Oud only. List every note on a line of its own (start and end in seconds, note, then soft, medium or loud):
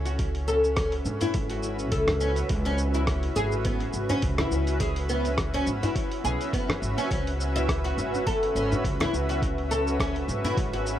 0.05 0.46 F#4 medium
0.48 0.63 A4 medium
0.76 0.92 C#4 medium
1.21 1.34 E4 loud
1.50 1.91 F#4 medium
1.92 2.07 A4 medium
2.21 2.36 C#4 medium
2.66 2.78 C#4 loud
2.94 3.35 E4 medium
3.36 3.51 G#4 loud
3.65 3.80 B3 medium
4.09 4.22 C#4 loud
4.38 4.79 E4 medium
4.80 4.96 G#4 loud
5.09 5.24 B3 medium
5.54 5.66 C#4 loud
5.83 6.24 E4 medium
6.24 6.40 G#4 loud
6.53 6.69 B3 medium
6.98 7.09 C#4 medium
7.11 7.26 C#4 medium
7.56 7.68 E4 loud
7.84 8.25 F#4 medium
8.26 8.42 A4 loud
8.55 8.71 C#4 medium
9.00 9.13 E4 loud
9.29 9.70 F#4 medium
9.71 9.86 A4 loud
10.00 10.15 C#4 medium
10.45 10.57 E4 loud
10.74 10.99 F#4 medium